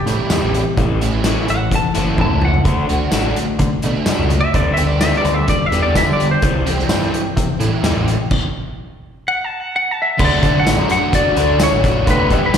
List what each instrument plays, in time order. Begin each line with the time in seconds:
Already playing: clean electric guitar G4
0.06 picked electric bass A2, overdriven electric guitar C3 E3 G3 C4 E4, closed hi-hat
0.30 picked electric bass E2, overdriven electric guitar C3 E3 G3 C4 E4, snare, closed hi-hat, tambourine
0.43 picked electric bass A1
0.54 overdriven electric guitar C3 E3, closed hi-hat
0.77 picked electric bass A1, overdriven electric guitar A2 E3 A3, kick, closed hi-hat
1.01 overdriven electric guitar A2 E3 A3 C#4 E4, closed hi-hat
1.24 overdriven electric guitar A2 E3 A3 C#4 E4, snare, closed hi-hat, tambourine
1.47 picked electric bass A1, overdriven electric guitar A2 E3, clean electric guitar F#5, closed hi-hat
1.70 overdriven electric guitar A2 E3, kick, closed hi-hat
1.75 clean electric guitar A5
1.94 picked electric bass F#1, overdriven electric guitar A2 E3 A3 C#4 E4, closed hi-hat
2.18 picked electric bass F#2, overdriven electric guitar A2 E3 A3 C#4 E4, clean electric guitar A5, kick, high tom
2.31 picked electric bass C#2
2.41 overdriven electric guitar A2 E3, clean electric guitar F#5, mid tom
2.54 floor tom
2.64 picked electric bass D2, overdriven electric guitar D3 A3 D4, kick, closed hi-hat
2.88 picked electric bass D2, overdriven electric guitar D3 A3 D4 F#4, closed hi-hat
3.11 picked electric bass A1, overdriven electric guitar D3 A3 D4 F#4, snare, closed hi-hat, tambourine
3.36 overdriven electric guitar D3 A3, closed hi-hat
3.59 overdriven electric guitar D3 A3, picked electric bass D3, kick, closed hi-hat
3.82 picked electric bass B2, overdriven electric guitar D3 A3 D4 F#4, closed hi-hat
4.06 picked electric bass F#2, overdriven electric guitar D3 A3 D4 F#4, snare, closed hi-hat, tambourine
4.18 picked electric bass C#2
4.29 overdriven electric guitar D3 A3, closed hi-hat
4.41 clean electric guitar E5
4.54 picked electric bass D2, overdriven electric guitar D3 G3 B3, clean electric guitar D5, kick, closed hi-hat
4.74 overdriven electric guitar D3 G3 B3 G4, clean electric guitar E5, closed hi-hat
4.87 clean electric guitar D5
5.01 overdriven electric guitar D3 G3 B3 G4, clean electric guitar E5, snare, closed hi-hat, tambourine
5.13 snare
5.17 clean electric guitar D5
5.25 picked electric bass D2, overdriven electric guitar D3 G3, closed hi-hat
5.34 clean electric guitar E5
5.47 overdriven electric guitar D3 G3, clean electric guitar D5, kick, closed hi-hat
5.66 clean electric guitar E5
5.71 picked electric bass E2, overdriven electric guitar D3 G3 B3 G4, closed hi-hat
5.83 clean electric guitar D5
5.95 overdriven electric guitar D3 G3 B3 G4, picked electric bass E3, clean electric guitar E5, kick, snare, closed hi-hat, tambourine
6.07 picked electric bass D3
6.13 clean electric guitar D5
6.18 overdriven electric guitar D3 G3, closed hi-hat
6.31 clean electric guitar C5
6.42 picked electric bass C2, overdriven electric guitar C3 E3 G3, kick, closed hi-hat
6.66 picked electric bass C2, overdriven electric guitar C3 E3 G3 E4 G4, closed hi-hat
6.79 snare
6.89 picked electric bass G2, overdriven electric guitar C3 E3 G3 E4 G4, snare, closed hi-hat, tambourine
7.02 snare
7.13 overdriven electric guitar C3 E3, closed hi-hat
7.37 picked electric bass C3, overdriven electric guitar C3 E3, kick, closed hi-hat
7.59 picked electric bass A2, overdriven electric guitar C3 E3 G3 E4 G4, closed hi-hat
7.82 picked electric bass E2, overdriven electric guitar C3 E3 G3 E4 G4, snare, closed hi-hat, tambourine
7.96 picked electric bass A1
8.07 overdriven electric guitar C3 E3, closed hi-hat
8.31 kick, crash
9.28 clean electric guitar F#5
9.45 clean electric guitar A5
9.60 clean electric guitar F#5
9.76 clean electric guitar F#5
9.91 clean electric guitar A5
10.02 clean electric guitar E5
10.18 picked electric bass D2, overdriven electric guitar D3 F#3 A3 D4 F#4, kick, crash
10.25 clean electric guitar D5
10.42 overdriven electric guitar D3 F#3 A3 D4 F#4, picked electric bass D3, kick, closed hi-hat
10.60 clean electric guitar F#5
10.66 picked electric bass A1, overdriven electric guitar D3 F#3 A3 D4 F#4, snare, closed hi-hat, tambourine
10.77 picked electric bass F#2
10.89 overdriven electric guitar D3 F#3 A3 D4 F#4, clean electric guitar F#5, closed hi-hat
11.13 overdriven electric guitar D3 F#3 A3 D4 F#4, clean electric guitar D5, kick, closed hi-hat
11.36 picked electric bass D2, overdriven electric guitar D3 F#3 A3 D4 F#4, closed hi-hat
11.59 overdriven electric guitar D3 F#3 A3 D4 F#4, snare, closed hi-hat, tambourine
11.63 clean electric guitar C#5
11.73 picked electric bass A1
11.83 overdriven electric guitar D3 F#3 A3 D4 F#4, kick, closed hi-hat
12.06 picked electric bass D2, overdriven electric guitar D3 G3 B3 G4, kick, closed hi-hat
12.11 clean electric guitar B4
12.30 overdriven electric guitar D3 G3 B3 G4, picked electric bass E3, kick, closed hi-hat
12.46 clean electric guitar B4
12.54 picked electric bass D2, overdriven electric guitar D3, snare, closed hi-hat, tambourine